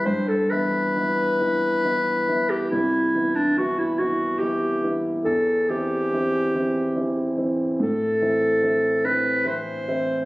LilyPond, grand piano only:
\new Staff \with { instrumentName = "Grand piano" } { \time 3/4 \key c \lydian \tempo 4 = 71 g,8 <e b e'>8 <e b e'>8 <e b e'>8 <e b e'>8 <e b e'>8 | c,8 <e b e'>8 <e b e'>8 <e b e'>8 <e b e'>8 <e b e'>8 | e,8 <e c' e'>8 <e c' e'>8 <e c' e'>8 <e c' e'>8 <e c' e'>8 | a,8 <e c' e'>8 <e c' e'>8 <e c' e'>8 <e c' e'>8 <e c' e'>8 | }